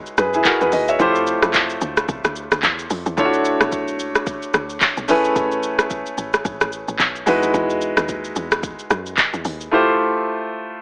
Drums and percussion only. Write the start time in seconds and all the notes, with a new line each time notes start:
0.06 shaker
0.18 cross-stick, shaker
0.34 shaker
0.45 kick, clap, shaker
0.61 shaker
0.72 open hi-hat, shaker
0.88 shaker
1.00 kick, shaker
1.15 shaker
1.27 shaker
1.42 cross-stick, shaker
1.54 kick, clap, shaker
1.70 shaker
1.81 shaker
1.97 cross-stick, shaker
2.09 kick, shaker
2.24 cross-stick, shaker
2.36 shaker
2.52 cross-stick, shaker
2.63 kick, clap, shaker
2.79 shaker
2.90 open hi-hat, shaker
3.06 shaker
3.18 kick, shaker
3.33 shaker
3.45 shaker
3.61 cross-stick, shaker
3.72 kick, shaker
3.88 shaker
3.99 shaker
4.15 cross-stick, shaker
4.27 kick, shaker
4.42 shaker
4.54 cross-stick, shaker
4.70 shaker
4.81 kick, clap, shaker
4.97 shaker
5.08 open hi-hat, shaker
5.24 shaker
5.36 kick, shaker
5.52 shaker
5.63 shaker
5.79 cross-stick, shaker
5.90 kick, shaker
6.06 shaker
6.18 shaker
6.34 cross-stick, shaker
6.45 kick, shaker
6.61 cross-stick, shaker
6.72 shaker
6.88 shaker
6.99 kick, clap, shaker
7.16 shaker
7.27 open hi-hat, shaker
7.43 shaker
7.54 kick, shaker
7.70 shaker
7.81 shaker
7.97 cross-stick, shaker
8.08 kick, shaker
8.24 shaker
8.36 shaker
8.52 cross-stick, shaker
8.63 kick, shaker
8.79 shaker
8.90 cross-stick, shaker
9.06 shaker
9.17 kick, clap, shaker
9.34 shaker
9.45 open hi-hat, shaker
9.61 shaker